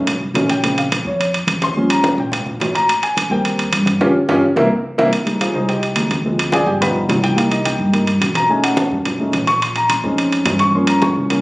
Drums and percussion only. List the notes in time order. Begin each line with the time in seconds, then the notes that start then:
0.07 high conga, low conga, high timbale
0.22 high conga
0.35 high conga, high timbale, low timbale
0.50 high timbale
0.64 high conga, high timbale
0.78 high conga, high timbale
0.92 high conga, high timbale
1.06 high conga
1.20 high conga, high timbale
1.34 high conga, high timbale
1.47 high conga, high timbale
1.62 high conga, high timbale
1.76 high conga
1.90 high conga, high timbale
2.04 high conga, high timbale
2.18 high conga
2.32 high conga, low conga, high timbale
2.46 high conga, low conga
2.60 high conga, high timbale, low timbale
2.75 high timbale
2.89 high conga, high timbale
3.03 high conga, high timbale
3.17 high conga, high timbale
3.31 high conga
3.45 high conga, high timbale
3.59 high conga, high timbale
3.73 high conga, high timbale
3.86 high conga, high timbale
4.01 high conga, high timbale
4.29 high conga, high timbale
4.56 high conga, high timbale
4.99 high conga, high timbale
5.13 high conga, high timbale
5.27 high conga, high timbale
5.41 high conga, high timbale
5.54 high conga
5.69 high conga, high timbale
5.82 high conga, high timbale
5.96 high conga, high timbale
6.11 high conga, high timbale
6.25 high conga
6.38 high conga, high timbale
6.52 high conga, high timbale
6.67 high conga
6.82 high conga, low conga, high timbale
6.96 high conga, low conga
7.09 high conga, high timbale, low timbale
7.23 high conga, high timbale
7.38 high timbale
7.52 high timbale
7.65 high conga, high timbale
7.79 high conga
7.93 high conga, high timbale
8.07 high conga, high timbale
8.21 high conga, high timbale
8.35 high conga, high timbale
8.50 high conga
8.63 high conga, high timbale
8.77 high conga, high timbale
8.91 high conga
9.05 high conga, low conga, high timbale
9.20 high conga
9.33 high conga, high timbale
9.47 high conga, high timbale
9.62 high conga, high timbale
9.76 high conga, high timbale
9.90 high conga, high timbale
10.04 high conga
10.18 high conga, high timbale
10.32 high conga, high timbale
10.46 high conga, high timbale, low timbale
10.59 high conga, high timbale
10.75 high conga
10.87 high conga, high timbale
11.02 high conga, high timbale
11.16 high conga
11.30 high conga, low conga, high timbale